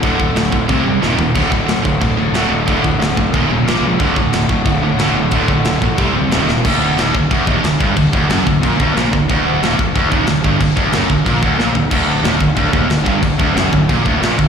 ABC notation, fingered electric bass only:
X:1
M:4/4
L:1/8
Q:1/4=182
K:none
V:1 name="Fingered electric bass" clef=bass
D,,, D,,, D,,, D,,, C,, ^F,,, _E,,, E,,, | D,,, D,,, D,,, D,,, D,,,2 D,,, D,,, | D,,, D,,, D,,, ^F,,, _E,,, E,,, _B,,, ^C,, | D,,, D,,, D,,, D,,, D,,,2 D,,, D,,, |
D,,, D,,, D,,, _B,,, C,, D,,, _E,,, E,,, | D,,,2 _E,,, D,,, D,,, E,,, D,,, G,,, | D,,, D,,, ^F,,, D,,, _B,,, D,,, B,,, D,,, | D,,,2 _E,,, D,,, D,,, E,,, D,,, G,,, |
D,,, D,,, ^F,,, D,,, _B,,, D,,, B,,, D,,, | D,,,2 _E,,, D,,, D,,, E,,, D,,, G,,, | D,,, D,,, ^F,,, D,,, _B,,, D,,, B,,, D,,, |]